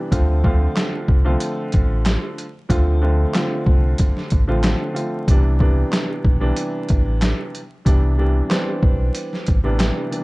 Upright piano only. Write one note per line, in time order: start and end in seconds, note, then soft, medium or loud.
0.11 0.41 D3 medium
0.11 0.42 F3 medium
0.11 0.42 A3 medium
0.11 0.42 C4 medium
0.11 0.42 F4 loud
0.44 1.19 D3 medium
0.44 1.19 F3 medium
0.44 1.19 A3 medium
0.44 1.20 C4 medium
0.44 1.20 F4 loud
1.25 2.43 D3 medium
1.25 2.43 F3 medium
1.25 2.43 A3 medium
1.25 2.44 C4 medium
1.25 2.44 F4 loud
2.69 2.99 D3 medium
2.69 2.99 F3 medium
2.69 3.00 A3 medium
2.69 3.00 C4 medium
2.69 3.00 F4 loud
3.02 3.32 D3 medium
3.02 3.32 F3 medium
3.02 3.32 A3 medium
3.02 3.32 C4 medium
3.02 3.32 F4 medium
3.35 4.39 D3 medium
3.35 4.39 F3 medium
3.35 4.39 A3 medium
3.35 4.39 C4 medium
3.35 4.40 F4 loud
4.47 4.91 D3 medium
4.47 4.92 F3 medium
4.47 4.92 A3 medium
4.47 4.92 C4 medium
4.47 4.92 F4 loud
4.93 5.24 D3 medium
4.93 5.25 F3 medium
4.93 5.25 A3 medium
4.93 5.25 C4 medium
4.93 5.25 F4 medium
5.29 5.58 C3 medium
5.29 5.58 E3 medium
5.29 5.59 G3 medium
5.29 5.59 B3 medium
5.29 5.59 D4 loud
5.59 6.35 C3 medium
5.59 6.35 E3 medium
5.59 6.35 G3 medium
5.59 6.35 B3 medium
5.59 6.36 D4 loud
6.40 7.59 C3 medium
6.40 7.59 E3 medium
6.40 7.59 G3 medium
6.40 7.59 B3 medium
6.40 7.59 D4 loud
7.85 8.15 C3 medium
7.85 8.16 E3 medium
7.85 8.16 G3 medium
7.85 8.16 B3 medium
7.85 8.16 D4 loud
8.18 8.48 C3 medium
8.18 8.48 E3 medium
8.18 8.48 G3 medium
8.18 8.49 B3 medium
8.18 8.49 D4 loud
8.50 9.55 E3 medium
8.50 9.55 G3 medium
8.50 9.55 B3 medium
8.50 9.55 C4 loud
8.50 9.55 D4 loud
9.63 10.08 C3 loud
9.63 10.08 E3 medium
9.63 10.08 G3 medium
9.63 10.08 B3 medium
9.63 10.08 D4 loud
10.10 10.24 C3 medium
10.10 10.24 E3 medium
10.10 10.24 G3 medium
10.10 10.24 B3 medium
10.10 10.24 D4 medium